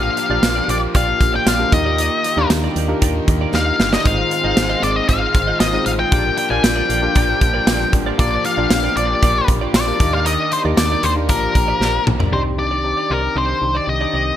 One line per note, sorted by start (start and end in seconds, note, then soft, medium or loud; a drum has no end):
0.00 0.17 A#2 medium
0.00 0.18 F3 medium
0.00 1.69 F3 medium
0.00 0.15 A#3 medium
0.00 0.20 A#3 medium
0.00 1.69 A#3 medium
0.00 0.21 D4 medium
0.00 0.21 F4 medium
0.00 4.02 F4 medium
0.00 0.21 G4 medium
0.00 4.02 G4 medium
0.00 0.21 A#4 medium
0.00 0.70 F5 loud
0.00 muted clean electric guitar stroke soft
0.16 0.42 F3 soft
0.16 0.42 A#3 medium
0.16 muted clean electric guitar stroke soft
0.16 closed hi-hat medium
0.29 0.39 A#1 loud
0.29 1.08 A#3 medium
0.29 1.08 D4 medium
0.29 1.09 F4 medium
0.29 0.42 F4 soft
0.29 1.09 G4 medium
0.29 0.43 G4 medium
0.29 1.09 A#4 medium
0.29 0.43 D5 medium
0.42 0.61 A#1 loud
0.42 0.92 A#2 medium
0.42 0.94 F3 medium
0.42 0.96 A#3 medium
0.42 snare loud
0.42 closed hi-hat medium
0.42 tambourine medium
0.56 0.67 F4 medium
0.56 0.68 G4 medium
0.56 0.69 D5 medium
0.68 0.87 A#1 loud
0.68 0.85 F4 medium
0.68 0.82 G4 medium
0.68 0.80 D5 medium
0.68 0.77 D5 medium
0.68 closed hi-hat medium
0.82 muted clean electric guitar stroke medium
0.93 1.14 A#1 loud
0.93 1.72 A#2 medium
0.93 1.73 F3 medium
0.93 1.72 A#3 medium
0.93 1.11 F4 medium
0.93 1.08 G4 medium
0.93 1.06 D5 loud
0.93 1.32 F5 medium
0.93 kick loud
0.93 closed hi-hat medium
1.08 muted clean electric guitar stroke medium
1.20 1.39 A#1 medium
1.20 muted clean electric guitar stroke soft
1.20 kick medium
1.20 closed hi-hat medium
1.34 1.46 F4 soft
1.34 1.46 G4 medium
1.34 1.47 D5 medium
1.34 1.48 G5 loud
1.46 1.65 A#1 medium
1.46 1.63 F4 medium
1.46 1.60 G4 medium
1.46 1.59 D5 loud
1.46 1.73 F5 loud
1.46 snare loud
1.46 closed hi-hat loud
1.46 tambourine medium
1.58 1.70 A#3 medium
1.58 1.72 D4 medium
1.58 1.72 F4 medium
1.58 1.71 G4 medium
1.58 1.72 A#4 medium
1.58 muted clean electric guitar stroke medium
1.71 2.10 D#2 loud
1.71 6.08 D#3 medium
1.71 2.49 D#3 medium
1.71 2.24 A#3 medium
1.71 4.03 A#3 medium
1.71 2.24 A#3 medium
1.71 2.23 D#4 medium
1.71 2.24 D#4 medium
1.71 2.24 G4 medium
1.71 2.24 A#4 medium
1.71 2.47 D#5 medium
1.71 muted clean electric guitar stroke soft
1.71 kick loud
1.71 closed hi-hat medium
1.86 1.97 D#4 medium
1.86 1.98 G4 medium
1.86 1.99 D5 medium
1.98 2.15 D#4 medium
1.98 2.12 G4 medium
1.98 2.11 D5 medium
1.98 closed hi-hat loud
2.12 muted clean electric guitar stroke soft
2.23 2.50 A#3 soft
2.23 2.50 D#4 medium
2.23 muted clean electric guitar stroke soft
2.23 closed hi-hat medium
2.36 2.46 D#2 loud
2.36 2.76 A#3 medium
2.36 2.76 D4 medium
2.36 2.76 D#4 medium
2.36 2.50 D#4 soft
2.36 2.77 G4 medium
2.36 2.51 G4 medium
2.36 2.77 A#4 loud
2.36 2.50 D5 medium
2.49 2.69 D#2 loud
2.49 3.00 D#3 medium
2.49 3.02 A#3 medium
2.49 3.05 D#4 medium
2.49 snare loud
2.49 closed hi-hat loud
2.49 tambourine medium
2.64 2.75 D#4 medium
2.64 2.76 G4 medium
2.64 2.76 D5 medium
2.76 2.95 D#2 loud
2.76 2.93 D#4 medium
2.76 2.89 G4 medium
2.76 2.88 D5 medium
2.76 closed hi-hat medium
2.88 3.67 A#3 medium
2.88 3.67 D4 medium
2.88 3.67 D#4 medium
2.88 3.67 G4 medium
2.88 3.68 A#4 loud
2.88 muted clean electric guitar stroke medium
3.00 3.21 D#2 loud
3.00 4.06 D#3 medium
3.00 4.06 A#3 medium
3.00 3.18 D#4 medium
3.00 3.15 G4 medium
3.00 3.14 D5 medium
3.00 kick loud
3.00 closed hi-hat loud
3.05 6.16 D#4 loud
3.15 muted clean electric guitar stroke medium
3.28 3.47 D#2 loud
3.28 muted clean electric guitar stroke soft
3.28 kick loud
3.28 closed hi-hat medium
3.41 3.52 D#4 soft
3.41 3.54 G4 medium
3.41 3.54 D5 medium
3.53 3.72 D#2 loud
3.53 3.70 D#4 medium
3.53 3.67 G4 medium
3.53 3.66 D5 loud
3.53 3.93 F5 medium
3.53 snare medium
3.67 muted clean electric guitar stroke medium
3.80 3.98 G1 medium
3.80 muted clean electric guitar stroke soft
3.80 snare medium
3.93 4.05 D#4 medium
3.93 4.06 G4 medium
3.93 4.05 D5 medium
3.93 4.07 D#5 medium
3.93 snare loud
4.04 4.24 G#1 loud
4.04 4.55 G#2 medium
4.04 4.57 D#3 medium
4.04 6.10 G#3 medium
4.04 4.58 G#3 medium
4.04 4.34 C4 medium
4.04 6.10 C4 medium
4.04 4.34 D#4 medium
4.04 4.35 F4 medium
4.04 4.22 F4 medium
4.04 6.10 F4 medium
4.04 4.35 G#4 medium
4.04 4.35 C5 medium
4.04 4.18 C5 medium
4.04 4.17 D#5 medium
4.04 4.83 F5 loud
4.04 kick loud
4.04 closed hi-hat medium
4.18 muted clean electric guitar stroke medium
4.31 muted clean electric guitar stroke soft
4.31 closed hi-hat medium
4.43 4.54 G#1 loud
4.43 5.22 C4 medium
4.43 5.22 D#4 medium
4.43 5.22 F4 medium
4.43 4.56 F4 soft
4.43 5.23 G#4 medium
4.43 5.23 C5 medium
4.43 4.57 C5 medium
4.43 4.57 D#5 medium
4.56 4.76 G#1 loud
4.56 5.07 G#2 medium
4.56 5.09 D#3 medium
4.56 5.10 G#3 medium
4.56 muted clean electric guitar stroke soft
4.56 snare loud
4.56 closed hi-hat loud
4.56 tambourine medium
4.69 4.82 F4 medium
4.69 4.82 C5 medium
4.69 4.83 D#5 medium
4.83 5.01 G#1 loud
4.83 4.99 F4 medium
4.83 4.96 C5 medium
4.83 4.96 D5 medium
4.83 4.95 D#5 medium
4.83 closed hi-hat medium
4.96 5.08 D#5 medium
4.96 muted clean electric guitar stroke soft
5.08 5.28 G#1 loud
5.08 6.11 G#2 medium
5.08 6.13 D#3 medium
5.08 5.25 F4 medium
5.08 5.22 C5 medium
5.08 5.20 D#5 medium
5.08 5.57 F5 medium
5.08 kick medium
5.08 closed hi-hat loud
5.13 6.14 G#3 medium
5.21 muted clean electric guitar stroke soft
5.34 5.53 G#1 medium
5.34 muted clean electric guitar stroke soft
5.34 kick loud
5.34 closed hi-hat medium
5.47 5.59 F4 medium
5.47 5.60 C5 medium
5.47 5.60 D#5 medium
5.60 5.79 G#1 medium
5.60 5.77 F4 medium
5.60 5.73 C5 medium
5.60 5.86 D#5 medium
5.60 5.72 D#5 medium
5.60 snare loud
5.60 closed hi-hat loud
5.60 tambourine medium
5.73 6.03 C4 medium
5.73 6.03 D#4 medium
5.73 6.03 F4 medium
5.73 6.03 G#4 medium
5.73 6.03 C5 medium
5.73 muted clean electric guitar stroke medium
5.86 6.05 A1 medium
5.86 5.91 F5 loud
5.86 muted clean electric guitar stroke soft
5.86 closed hi-hat medium
5.99 6.11 F4 medium
5.99 6.12 C5 medium
5.99 6.12 D#5 medium
5.99 6.37 G5 loud
6.11 6.31 A#1 loud
6.11 6.38 G2 medium
6.11 6.39 D3 medium
6.11 9.96 F3 medium
6.11 6.36 G3 medium
6.11 6.41 A#3 medium
6.11 11.25 A#3 medium
6.11 6.42 D4 medium
6.11 9.96 D4 medium
6.11 6.42 F4 medium
6.11 6.29 F4 medium
6.11 8.17 G4 loud
6.11 6.42 G4 medium
6.11 6.42 A#4 medium
6.11 6.25 A#4 medium
6.11 6.24 D5 loud
6.11 kick loud
6.11 closed hi-hat medium
6.25 muted clean electric guitar stroke soft
6.37 6.63 D3 soft
6.37 6.64 G3 medium
6.37 6.50 G5 loud
6.37 muted clean electric guitar stroke soft
6.37 closed hi-hat medium
6.50 6.60 A#1 loud
6.50 6.90 A#3 medium
6.50 6.90 D4 medium
6.50 6.90 F4 medium
6.50 6.62 F4 medium
6.50 6.90 G4 medium
6.50 6.91 A#4 medium
6.50 6.63 A#4 medium
6.50 6.63 D5 medium
6.50 6.63 G#5 loud
6.63 6.82 A#1 loud
6.63 7.13 G2 medium
6.63 7.17 D3 medium
6.63 7.19 G3 medium
6.63 7.93 G5 loud
6.63 snare loud
6.63 closed hi-hat loud
6.63 tambourine medium
6.76 6.88 F4 medium
6.76 6.89 A#4 medium
6.76 6.89 D5 medium
6.89 7.08 A#1 loud
6.89 7.06 F4 medium
6.89 7.03 A#4 medium
6.89 7.01 D5 medium
6.89 closed hi-hat medium
7.02 7.81 A#3 medium
7.02 7.81 D4 medium
7.02 7.81 F4 medium
7.02 7.81 G4 medium
7.02 7.81 A#4 medium
7.02 muted clean electric guitar stroke soft
7.14 7.34 A#1 loud
7.14 8.18 G2 medium
7.14 8.19 D3 medium
7.14 7.32 F4 medium
7.14 7.29 A#4 medium
7.14 7.28 D5 medium
7.14 kick medium
7.14 closed hi-hat loud
7.19 8.20 G3 medium
7.29 muted clean electric guitar stroke soft
7.41 7.60 A#1 loud
7.41 muted clean electric guitar stroke medium
7.41 kick medium
7.41 closed hi-hat medium
7.54 7.66 F4 medium
7.54 7.67 A#4 medium
7.54 7.67 D5 medium
7.67 7.86 A#1 loud
7.67 7.84 F4 medium
7.67 7.80 A#4 loud
7.67 7.79 D5 loud
7.67 snare loud
7.67 closed hi-hat loud
7.67 tambourine medium
7.80 muted clean electric guitar stroke medium
7.93 8.12 A1 medium
7.93 muted clean electric guitar stroke soft
7.93 kick medium
7.93 closed hi-hat medium
8.06 8.18 F4 medium
8.06 8.20 A#4 medium
8.06 8.19 D5 medium
8.18 8.38 A#1 loud
8.18 8.45 A#2 medium
8.18 8.45 F3 medium
8.18 8.48 A#3 medium
8.18 8.42 A#3 loud
8.18 8.48 D4 medium
8.18 8.48 F4 medium
8.18 8.36 F4 medium
8.18 8.48 G4 medium
8.18 9.98 G4 medium
8.18 8.32 G4 medium
8.18 8.49 A#4 medium
8.18 8.45 D5 loud
8.18 8.31 D5 loud
8.18 kick loud
8.18 closed hi-hat medium
8.33 muted clean electric guitar stroke soft
8.44 8.70 F3 soft
8.44 8.70 A#3 soft
8.44 8.97 F5 loud
8.44 muted clean electric guitar stroke soft
8.44 closed hi-hat medium
8.57 8.67 A#1 loud
8.57 9.36 A#3 medium
8.57 9.36 D4 medium
8.57 9.36 F4 medium
8.57 8.70 F4 medium
8.57 9.37 G4 medium
8.57 8.71 G4 medium
8.57 9.37 A#4 medium
8.57 8.71 D5 medium
8.69 8.89 A#1 loud
8.69 9.20 A#2 medium
8.69 9.21 F3 medium
8.69 9.23 A#3 medium
8.69 snare loud
8.69 closed hi-hat medium
8.69 tambourine medium
8.84 8.96 F4 medium
8.84 8.97 G4 medium
8.84 8.97 D5 medium
8.96 9.15 A#1 medium
8.96 9.13 F4 medium
8.96 9.10 G4 medium
8.96 9.45 D5 medium
8.96 9.09 D5 medium
8.96 closed hi-hat medium
9.10 muted clean electric guitar stroke soft
9.21 9.41 A#1 loud
9.21 10.00 A#2 medium
9.21 10.00 F3 medium
9.21 10.01 A#3 medium
9.21 9.39 F4 medium
9.21 9.36 G4 medium
9.21 9.35 D5 medium
9.21 kick loud
9.21 closed hi-hat loud
9.36 muted clean electric guitar stroke medium
9.48 9.67 A#1 medium
9.48 muted clean electric guitar stroke soft
9.48 kick loud
9.48 closed hi-hat medium
9.61 9.73 F4 medium
9.61 9.74 G4 medium
9.61 9.74 D5 medium
9.74 9.93 A#1 medium
9.74 9.90 F4 medium
9.74 9.87 G4 medium
9.74 9.86 D5 loud
9.74 10.11 D5 medium
9.74 snare loud
9.74 closed hi-hat loud
9.74 tambourine medium
9.86 9.98 A#3 medium
9.86 9.98 D4 medium
9.86 10.00 F4 medium
9.86 9.99 G4 medium
9.86 9.99 A#4 medium
9.86 muted clean electric guitar stroke medium
9.99 10.37 D#2 loud
9.99 11.28 D#3 medium
9.99 10.53 D#3 medium
9.99 10.51 A#3 medium
9.99 10.52 A#3 medium
9.99 10.52 D4 medium
9.99 10.52 D#4 medium
9.99 10.50 D#4 medium
9.99 10.52 G4 medium
9.99 12.31 G4 medium
9.99 10.52 A#4 medium
9.99 12.30 D5 medium
9.99 muted clean electric guitar stroke soft
9.99 kick loud
9.99 closed hi-hat medium
10.13 10.25 D#4 soft
10.13 10.26 G4 medium
10.13 10.26 D5 medium
10.13 10.26 F5 loud
10.26 10.43 D#4 medium
10.26 10.39 G4 medium
10.26 10.38 D5 medium
10.26 10.51 D#5 loud
10.26 closed hi-hat loud
10.39 muted clean electric guitar stroke soft
10.51 10.77 A#3 soft
10.51 10.77 D#4 medium
10.51 10.60 C5 loud
10.51 muted clean electric guitar stroke soft
10.51 closed hi-hat medium
10.64 10.74 D#2 loud
10.64 11.04 A#3 medium
10.64 11.04 D4 medium
10.64 11.04 D#4 medium
10.64 10.77 D#4 medium
10.64 11.04 G4 medium
10.64 10.78 G4 medium
10.64 11.04 A#4 medium
10.64 10.78 D5 medium
10.76 10.96 D#2 loud
10.76 11.29 D#3 medium
10.76 11.30 A#3 medium
10.76 11.30 D#4 medium
10.76 11.04 D5 loud
10.76 muted clean electric guitar stroke soft
10.76 snare loud
10.76 closed hi-hat loud
10.76 tambourine medium
10.92 11.03 D#4 soft
10.92 11.04 G4 medium
10.92 11.04 D5 medium
11.03 11.31 D#2 loud
11.03 11.20 D#4 medium
11.03 11.17 G4 medium
11.03 11.11 C5 medium
11.03 11.16 D5 medium
11.03 closed hi-hat medium
11.16 11.27 A#3 medium
11.16 11.28 D4 medium
11.16 11.29 D#4 medium
11.16 11.28 G4 medium
11.16 11.28 A#4 medium
11.16 muted clean electric guitar stroke soft
11.28 11.48 A#1 loud
11.28 12.32 A#2 medium
11.28 12.32 F3 medium
11.28 12.34 F3 medium
11.28 12.12 A#3 medium
11.28 12.32 A#3 medium
11.28 12.12 D4 medium
11.28 12.12 F4 medium
11.28 11.46 G4 medium
11.28 12.12 G4 medium
11.28 12.12 A#4 medium
11.28 12.03 A#4 medium
11.28 11.43 A#4 medium
11.28 11.42 D5 medium
11.28 kick medium
11.28 closed hi-hat loud
11.33 12.35 A#3 medium
11.43 muted clean electric guitar stroke soft
11.55 11.74 A#1 loud
11.55 muted clean electric guitar stroke soft
11.55 kick medium
11.55 closed hi-hat medium
11.68 11.79 G4 medium
11.68 11.80 A#4 medium
11.68 11.81 D5 medium
11.80 11.99 A#1 loud
11.80 11.97 G4 medium
11.80 11.94 A#4 medium
11.80 11.92 D5 medium
11.80 snare medium
11.94 muted clean electric guitar stroke medium
12.07 12.26 B1 medium
12.07 muted clean electric guitar stroke soft
12.07 mid tom loud
12.19 12.33 G4 medium
12.19 12.33 A#4 medium
12.19 12.33 D5 medium
12.19 floor tom medium
12.32 12.94 C2 loud
12.32 14.37 D#3 medium
12.32 12.52 C4 medium
12.32 14.37 C4 medium
12.32 12.52 D4 medium
12.32 12.52 D#4 medium
12.32 12.49 D#4 medium
12.32 14.37 G4 medium
12.32 12.53 G4 medium
12.32 12.46 G4 medium
12.32 12.40 C5 medium
12.32 12.44 D5 medium
12.46 muted clean electric guitar stroke soft
12.58 12.78 C4 medium
12.58 12.78 D4 medium
12.58 12.78 D#4 medium
12.58 12.78 G4 medium
12.58 13.12 D5 medium
12.58 muted clean electric guitar stroke soft
12.71 12.83 D#4 soft
12.71 12.84 G4 medium
12.71 12.84 D5 medium
12.84 13.23 C4 medium
12.84 13.23 D4 medium
12.84 13.24 D#4 medium
12.84 13.24 G4 medium
12.84 muted clean electric guitar stroke soft
12.97 13.09 D#4 soft
12.97 13.09 G4 medium
12.97 13.10 D5 medium
13.10 13.29 C2 medium
13.10 13.26 D#4 medium
13.10 13.23 G4 medium
13.10 13.37 A#4 medium
13.10 13.21 D5 medium
13.23 muted clean electric guitar stroke soft
13.35 13.54 C2 loud
13.35 13.55 C4 medium
13.35 13.55 D4 medium
13.35 13.56 D#4 medium
13.35 13.52 D#4 medium
13.35 13.56 G4 medium
13.35 13.49 G4 medium
13.35 13.77 C5 medium
13.35 13.48 D5 medium
13.49 muted clean electric guitar stroke medium
13.62 13.81 C2 medium
13.62 13.91 C4 medium
13.62 13.91 D4 medium
13.62 13.92 D#4 medium
13.62 13.92 G4 medium
13.62 muted clean electric guitar stroke soft
13.75 13.87 D#4 soft
13.75 13.87 G4 medium
13.75 13.88 D5 medium
13.75 13.89 D5 medium
13.88 14.06 C2 loud
13.88 14.37 D#5 medium
13.88 muted clean electric guitar stroke soft
14.00 14.30 C4 medium
14.00 14.30 D4 medium
14.00 14.31 D#4 medium
14.00 14.12 D#4 soft
14.00 14.13 G4 medium
14.00 14.31 G4 medium
14.00 14.14 D5 medium
14.13 14.32 C2 loud
14.13 14.30 D#4 medium
14.13 14.27 G4 medium
14.13 14.26 D5 medium
14.27 muted clean electric guitar stroke soft